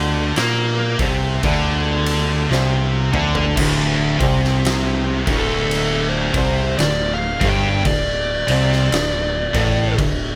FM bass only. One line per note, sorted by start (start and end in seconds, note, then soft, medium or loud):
0.00 0.33 D2 loud
0.37 0.96 A#2 loud
0.99 1.40 C2 medium
1.44 2.47 D2 loud
2.51 3.10 C2 loud
3.13 3.55 D2 medium
3.58 4.17 D1 loud
4.20 5.24 C2 loud
5.27 6.31 D1 loud
6.35 6.76 C2 loud
6.79 7.38 D1 medium
7.41 7.83 G1 loud
7.85 8.44 D1 medium
8.49 8.90 C2 loud
8.92 9.51 D1 medium
9.55 9.96 A1 medium
9.99 10.35 D1 medium